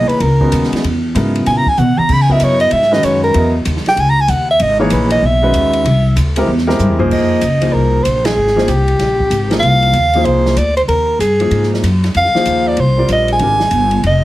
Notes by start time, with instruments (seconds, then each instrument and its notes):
Already playing: grand piano E3 A#3 D#4 G#4 C#5
0.08 soprano saxophone B4, ride
0.20 upright bass C#2, soprano saxophone A#4, ride
0.40 grand piano D#3 G#3 B3 C#4 F#4, kick
0.52 upright bass D#2, hi-hat pedal, ride
0.64 snare
0.71 muted upright bass stroke, snare, ride
0.83 upright bass E2, ride
1.15 upright bass G#2, grand piano C#3 F#3 B3 E4 A#4, hi-hat pedal, ride
1.35 ride
1.46 upright bass A#2, soprano saxophone G#5, ride
1.57 soprano saxophone A#5
1.66 soprano saxophone G#5, muted upright bass stroke, kick
1.77 upright bass B2, soprano saxophone F#5, hi-hat pedal, high tom
1.97 soprano saxophone A#5, muted upright bass stroke, high tom
2.09 upright bass C#3, kick, crash
2.13 soprano saxophone B5
2.22 soprano saxophone G#5
2.29 grand piano F#3 B3 E4 A#4 D#5, soprano saxophone E5, kick
2.40 upright bass F#2, hi-hat pedal, ride
2.44 soprano saxophone C#5
2.60 soprano saxophone D#5, ride
2.71 upright bass G#2, soprano saxophone E5, ride
2.82 snare
2.91 grand piano D#3 G#3 C#4 F#4 B4, soprano saxophone D#5, snare
3.03 upright bass F#2, soprano saxophone C#5, hi-hat pedal, ride
3.23 soprano saxophone A#4
3.34 upright bass E2, grand piano F#3 B3 E4 A#4 D#5, ride
3.65 upright bass D#2, hi-hat pedal, ride
3.77 snare
3.85 soprano saxophone G5, muted upright bass stroke, snare, ride
3.96 upright bass C#2, ride
4.00 soprano saxophone G#5
4.10 soprano saxophone A#5
4.21 soprano saxophone G#5
4.28 upright bass D#2, soprano saxophone F#5, hi-hat pedal, ride
4.51 soprano saxophone E5
4.60 upright bass G#1, soprano saxophone D#5, ride
4.79 grand piano E3 A#3 D#4 G#4 C#5, soprano saxophone G#4
4.90 upright bass A#1, soprano saxophone B4, hi-hat pedal, ride
5.10 soprano saxophone D#5, ride
5.22 upright bass B1, soprano saxophone E5
5.42 grand piano D#3 G#3 C#4 F#4 B4
5.53 upright bass D#2, hi-hat pedal, ride
5.73 ride
5.84 upright bass C2, ride
6.16 upright bass D2, hi-hat pedal, ride
6.36 grand piano G#3 C4 E4 G4 A#4, ride
6.47 upright bass E2
6.58 snare
6.67 grand piano G#3 C4 E4 G4 A#4, snare
6.79 upright bass G2, hi-hat pedal
6.89 upright bass E2
6.99 upright bass C2, grand piano F3 A#3 D#4 G#4 C5, floor tom
7.11 upright bass F2, soprano saxophone D#5, kick, crash
7.41 upright bass C#2, hi-hat pedal, ride
7.61 grand piano F3 A#3 D#4 G#4 C5, ride
7.73 upright bass C2, soprano saxophone A#4
8.03 upright bass A#1, soprano saxophone C5, hi-hat pedal, ride
8.25 soprano saxophone G#4, snare, ride
8.36 upright bass G#1
8.47 snare
8.56 grand piano F3 A#3 D#4 G#4 C5, snare
8.68 upright bass C2, soprano saxophone G4, hi-hat pedal, ride
8.88 ride
8.99 upright bass A#1, snare, ride
9.20 kick
9.30 upright bass G#1, hi-hat pedal, ride
9.50 grand piano F3 A#3 D#4 G#4 A#4, snare, ride
9.60 upright bass C2, soprano saxophone F5, ride
9.82 ride
9.93 upright bass D#2, hi-hat pedal, ride
10.13 grand piano F3 A#3 D#4 G#4 C5, ride
10.24 upright bass C2, soprano saxophone C5, ride
10.46 snare
10.56 upright bass D2, soprano saxophone D5, hi-hat pedal, ride
10.77 soprano saxophone C5, ride
10.88 upright bass D#2, soprano saxophone A#4, ride
11.19 upright bass G2, soprano saxophone G#4, hi-hat pedal, ride
11.40 grand piano F3 A#3 D#4 G#4 C5, ride
11.50 upright bass G#2, ride
11.63 snare
11.74 snare
11.83 upright bass F#2, hi-hat pedal, ride
12.04 snare, ride
12.14 upright bass F2, soprano saxophone F5, ride
12.25 snare
12.34 grand piano F3 A#3 D#4 G#4 C5, muted upright bass stroke, snare
12.45 upright bass D#2, hi-hat pedal, ride
12.68 soprano saxophone D5
12.77 upright bass C2, soprano saxophone C5, ride
12.97 grand piano G3 C4 F4 A#4 D5
13.09 upright bass A#1, soprano saxophone D#5, hi-hat pedal, ride
13.28 ride
13.33 soprano saxophone G#5
13.39 upright bass G#1, grand piano D#3 G#3 D4 G4 A#4, ride
13.60 snare
13.71 upright bass G1, hi-hat pedal, ride
13.91 ride
14.03 upright bass F1, soprano saxophone D#5, ride